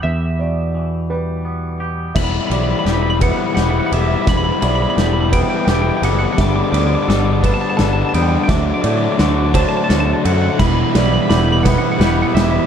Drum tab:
CC |------|x-----|------|------|
RD |------|-xxxxx|xxxxxx|xxxxxx|
SD |------|o-o-o-|o-o-o-|o-o-o-|
BD |------|o--o--|o--o--|o--o--|

CC |------|x-----|
RD |xxxxxx|-xxxxx|
SD |o-o-o-|oooooo|
BD |o--o--|o--o--|